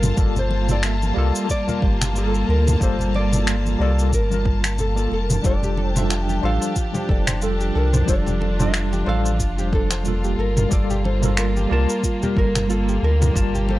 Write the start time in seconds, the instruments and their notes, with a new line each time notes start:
Already playing: sub bass G1, tine electric piano G3 A#3 F4 A4, string section G3 A#3 F4 A5, nylon-string guitar A#4
0.03 mid tom, high conga, cabasa
0.16 sub bass G1, tine electric piano G3 A#3 F4 A4, kick, cabasa
0.36 nylon-string guitar C5, low conga, cabasa
0.51 muted conga
0.68 tine electric piano G3 A#3 F4 A4, mid tom, cabasa
0.72 nylon-string guitar D5
0.83 nylon-string guitar E5, finger snap, cabasa
1.02 high conga, cabasa
1.14 sub bass C2, tine electric piano G3 A#3 F4
1.18 tine electric piano A4
1.35 cabasa
1.49 nylon-string guitar D5, kick, cabasa
1.66 tine electric piano G3 A#3 F4 A#4, muted conga, high conga, low conga, cabasa
1.82 sub bass G1, nylon-string guitar G4, kick
2.02 finger snap, mid tom, cabasa
2.13 tine electric piano G3 A#3 F4 A4, cabasa
2.18 nylon-string guitar A4
2.34 cabasa
2.49 sub bass D2, nylon-string guitar A#4
2.67 mid tom, high conga, cabasa
2.79 sub bass G1, tine electric piano G3 A#3 F4 A4, nylon-string guitar C5, kick, cabasa
2.99 low conga, cabasa
3.14 nylon-string guitar D5, muted conga
3.31 tine electric piano G3 A#3 F4 A4, mid tom, cabasa
3.47 finger snap, cabasa
3.66 high conga, cabasa
3.78 sub bass C2, tine electric piano G3 A#3 F4, nylon-string guitar D5
3.82 tine electric piano A4
3.99 cabasa
4.13 sub bass G1, nylon-string guitar A#4, kick, cabasa
4.30 tine electric piano G3 A#3 F4 A#4, high conga, cabasa
4.45 kick, muted conga
4.64 finger snap, muted conga, cabasa
4.78 nylon-string guitar A4, low conga, cabasa
4.95 tine electric piano G3 A#3 F4, cabasa
4.99 tine electric piano A4
5.11 sub bass F1, nylon-string guitar A#4, muted conga
5.30 mid tom, high conga, cabasa
5.42 sub bass F1, string section F3 D4 G4, tine electric piano G3 D4 F4 A4, synth arpeggio sound F4, nylon-string guitar D5, kick, cabasa
5.63 synth arpeggio sound G4, low conga, cabasa
5.77 synth arpeggio sound A4, muted conga
5.94 tine electric piano G3 D4 F4 A4, synth arpeggio sound C5, nylon-string guitar E5, mid tom, cabasa
6.10 synth arpeggio sound F4, finger snap, cabasa
6.29 synth arpeggio sound G4, high conga, cabasa
6.41 sub bass A1, tine electric piano G3 D4 F4 A4, synth arpeggio sound C5
6.45 nylon-string guitar F5
6.62 synth arpeggio sound C5, cabasa
6.76 synth arpeggio sound F4, kick, cabasa
6.92 tine electric piano G3 D4 F4, synth arpeggio sound G4, muted conga, high conga, low conga, cabasa
6.96 tine electric piano C5
7.09 sub bass F1, synth arpeggio sound A4, nylon-string guitar D5, kick
7.27 synth arpeggio sound C5, finger snap, mid tom, cabasa
7.40 tine electric piano G3 D4 F4 A4, synth arpeggio sound F4, nylon-string guitar A4, cabasa
7.60 synth arpeggio sound G4, cabasa
7.75 sub bass C2, synth arpeggio sound A4, nylon-string guitar A#4
7.93 synth arpeggio sound C5, mid tom, high conga, cabasa
8.06 sub bass F1, tine electric piano G3 D4 F4 A4, synth arpeggio sound F4, string section F4, nylon-string guitar D5, kick, cabasa
8.26 synth arpeggio sound G4, low conga, cabasa
8.41 synth arpeggio sound A4, muted conga
8.58 tine electric piano G3 D4 F4, synth arpeggio sound C5, nylon-string guitar E5, mid tom, cabasa
8.62 tine electric piano A4
8.74 synth arpeggio sound F4, finger snap, cabasa
8.93 synth arpeggio sound G4, high conga, cabasa
9.04 sub bass A1, tine electric piano G3 D4 F4 A4, synth arpeggio sound C5
9.09 nylon-string guitar F5
9.25 synth arpeggio sound C5, cabasa
9.40 sub bass F1, synth arpeggio sound F4, kick, cabasa
9.57 tine electric piano G3 D4 F4 C5, synth arpeggio sound G4, high conga, cabasa
9.73 synth arpeggio sound A4, nylon-string guitar A4, kick, muted conga
9.91 synth arpeggio sound C5, finger snap, muted conga, cabasa
10.04 tine electric piano G3 A#3 F4, synth arpeggio sound F4, low conga, cabasa
10.08 tine electric piano A4
10.24 synth arpeggio sound G4, cabasa
10.38 sub bass G1, string section G3 A#3, synth arpeggio sound A4, nylon-string guitar A#4, muted conga
10.57 synth arpeggio sound A#4, mid tom, high conga, cabasa
10.69 sub bass G1, tine electric piano G3 A#3 F4, synth arpeggio sound F4, nylon-string guitar D5, kick, cabasa
10.73 tine electric piano A4
10.90 synth arpeggio sound G4, low conga, cabasa
11.04 synth arpeggio sound A4, nylon-string guitar C5, muted conga
11.21 tine electric piano G3 A#3 F4 A4, synth arpeggio sound A#4, mid tom, cabasa
11.37 synth arpeggio sound F4, nylon-string guitar A#4, finger snap, cabasa
11.56 synth arpeggio sound G4, high conga, cabasa
11.69 sub bass C2, tine electric piano G3 A#3 F4 A5, synth arpeggio sound A#4
11.73 nylon-string guitar A#4
11.89 synth arpeggio sound A#4, cabasa
12.03 synth arpeggio sound F4, kick, cabasa
12.21 tine electric piano G3 A#3 F4 A#4, synth arpeggio sound G4, muted conga, high conga, low conga, cabasa
12.36 sub bass G1, synth arpeggio sound A4, nylon-string guitar A#4, kick
12.55 synth arpeggio sound A#4, finger snap, mid tom, cabasa
12.68 tine electric piano G3 A#3 F4 A4, synth arpeggio sound F4, nylon-string guitar A4, cabasa
12.89 synth arpeggio sound G4, cabasa
13.03 sub bass D2, string section G4, synth arpeggio sound A4, nylon-string guitar A#4
13.22 synth arpeggio sound A#4, mid tom, high conga, cabasa
13.33 sub bass G1, tine electric piano G3 A#3 F4 A5, synth arpeggio sound F4, kick, cabasa
13.55 synth arpeggio sound G4, low conga, cabasa
13.69 synth arpeggio sound A4, nylon-string guitar C5, muted conga